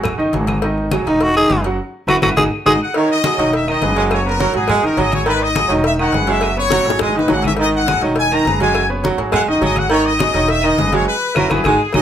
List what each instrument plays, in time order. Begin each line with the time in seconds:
Already playing: upright bass G#1, grand piano F#3 F#4 G#4
0.04 cowbell, high conga, low conga, claves
0.18 upright bass F#1, grand piano D#3 D#4 D#5, high conga
0.33 upright bass G#1, grand piano F#3 F#4 G#4, cowbell, high conga
0.47 cowbell, high conga, claves
0.62 grand piano D#3 D#4 D#5, cowbell, high conga
0.78 high conga
0.91 grand piano F#3 F#4 G#4, cowbell, high conga, claves
1.06 upright bass E1, grand piano D#3 D#4 D#5, tenor saxophone D#4, cowbell, high conga
1.21 tenor saxophone F#4, cowbell, high conga
1.36 grand piano D#3 D#4 D#5, tenor saxophone G#4, high conga, claves
1.50 upright bass F#1, grand piano G#3 G#4 B4, cowbell, high conga
1.64 grand piano F#3 F#4 F#5, cowbell
2.07 upright bass F#1, grand piano E4 F#4 B4, tenor saxophone F#4, cowbell, high conga, claves
2.22 upright bass F#1, grand piano E4 F#4 B4, tenor saxophone F#4, cowbell, high conga, claves
2.36 upright bass G#1, grand piano D#4 F#4 G#4, tenor saxophone G#4, cowbell, high conga, claves
2.66 upright bass G#1, grand piano D#4 F#4 G#4, tenor saxophone G#4, trumpet section D#5, cowbell, high conga, claves
2.82 trumpet section F#5
2.94 grand piano D#3 D#4 D#5, baritone saxophone D#3, trumpet section C#5, cowbell, high conga
3.10 trumpet section D#5, high conga
3.24 grand piano F#3 F#4 G#4, cowbell, high conga, claves
3.38 upright bass E1, grand piano D#3 D#4 D#5, baritone saxophone F#3, cowbell, high conga
3.53 trumpet section E5, cowbell, high conga
3.67 baritone saxophone D#3, grand piano D#3 D#4 D#5, trumpet section D#5, high conga, claves
3.81 upright bass F#1, grand piano G#3 G#4 B4, cowbell, high conga
3.96 grand piano F#3 F#4 F#5, baritone saxophone G#3, trumpet section D#5, cowbell
4.11 trumpet section C#5, cowbell, high conga, claves
4.26 grand piano B3 B4 C#5, trumpet section A#4, high conga
4.39 baritone saxophone F#3, grand piano F#3 F#4 F#5, cowbell, high conga
4.54 upright bass G#1, grand piano F#3 F#4 G#4, trumpet section G#4, cowbell
4.68 baritone saxophone G#3, cowbell, high conga, low conga, claves
4.82 upright bass F#1, grand piano D#3 D#4 D#5, trumpet section A#4, high conga
4.97 upright bass G#1, grand piano F#3 F#4 G#4, baritone saxophone F#3, trumpet section D#5, cowbell, high conga
5.12 trumpet section C#5, cowbell, high conga, claves
5.26 baritone saxophone D#3, grand piano D#3 D#4 D#5, trumpet section B4, cowbell, high conga
5.42 trumpet section D#5, high conga
5.55 grand piano F#3 F#4 G#4, cowbell, high conga, claves
5.68 upright bass E1, grand piano D#3 D#4 D#5, baritone saxophone F#3, cowbell, high conga
5.84 trumpet section E5, cowbell, high conga
5.99 grand piano D#3 D#4 D#5, baritone saxophone D#3, trumpet section F#5, high conga, claves
6.12 upright bass F#1, grand piano G#3 G#4 B4, cowbell, high conga
6.27 grand piano F#3 F#4 F#5, baritone saxophone G#3, trumpet section E5, cowbell
6.41 cowbell, high conga, claves
6.57 grand piano B3 B4 C#5, trumpet section C#5, high conga
6.70 baritone saxophone F#3, grand piano F#3 F#4 F#5, cowbell, high bongo, high conga
6.80 high bongo
6.85 upright bass G#1, grand piano F#3 F#4 G#4, cowbell
6.90 high bongo
6.99 baritone saxophone G#3, trumpet section D#5, cowbell, high bongo, high conga, low conga, claves
7.09 low bongo
7.15 grand piano D#3 D#4 D#5, trumpet section B4, high conga
7.19 low bongo
7.28 upright bass G#1, baritone saxophone F#3, grand piano F#3 F#4 G#4, cowbell, low bongo, high conga
7.32 trumpet section F#5
7.42 cowbell, high conga, claves
7.47 trumpet section E5, low bongo
7.57 grand piano D#3 D#4 D#5, baritone saxophone D#3, cowbell, high conga
7.62 trumpet section D#5
7.74 trumpet section F#5, high conga
7.86 grand piano F#3 F#4 G#4, cowbell, high conga, claves
8.01 upright bass E1, grand piano D#3 D#4 D#5, baritone saxophone F#3, cowbell, high conga
8.16 trumpet section G#5, cowbell, high conga
8.31 baritone saxophone D#3, grand piano D#3 D#4 D#5, trumpet section A#5, high conga, claves
8.45 upright bass F#1, grand piano G#3 G#4 B4, cowbell, high conga
8.60 grand piano F#3 F#4 F#5, baritone saxophone G#3, trumpet section G#5, cowbell, high conga
8.75 cowbell, claves
8.90 grand piano B3 B4 C#5, high conga
9.04 grand piano F#3 F#4 F#5, baritone saxophone F#3, cowbell, high conga
9.18 upright bass G#1, grand piano F#3 F#4 G#4, cowbell
9.32 baritone saxophone G#3, trumpet section F#5, cowbell, high conga, low conga, claves
9.47 upright bass F#1, grand piano D#3 D#4 D#5, trumpet section D#5, high conga
9.61 upright bass G#1, grand piano F#3 F#4 G#4, baritone saxophone F#3, trumpet section D#5, cowbell, high conga
9.76 trumpet section F#5, cowbell, high conga, claves
9.90 baritone saxophone D#3, grand piano D#3 D#4 D#5, trumpet section C#5, cowbell, high conga
10.06 trumpet section D#5, high conga
10.19 grand piano F#3 F#4 G#4, cowbell, high conga, claves
10.34 upright bass E1, grand piano D#3 D#4 D#5, baritone saxophone F#3, cowbell, high conga
10.48 trumpet section E5, cowbell, high conga
10.63 baritone saxophone D#3, grand piano D#3 D#4 D#5, trumpet section D#5, high conga, claves
10.78 upright bass F#1, grand piano G#3 G#4 B4, cowbell, high conga
10.92 grand piano F#3 F#4 F#5, baritone saxophone G#3, trumpet section C#5, cowbell, high conga
11.08 trumpet section B4
11.35 upright bass F#1, baritone saxophone F#3, grand piano E4 F#4 B4, trumpet section A#4, cowbell, high conga, claves
11.50 upright bass F#1, grand piano E4 F#4 B4, trumpet section G#4, cowbell, high conga, claves
11.64 upright bass G#1, baritone saxophone G#3, grand piano D#4 F#4 G#4, cowbell, high conga, claves
11.93 upright bass G#1, baritone saxophone F#3, grand piano D#4 F#4 G#4, trumpet section D#5, cowbell, high conga, claves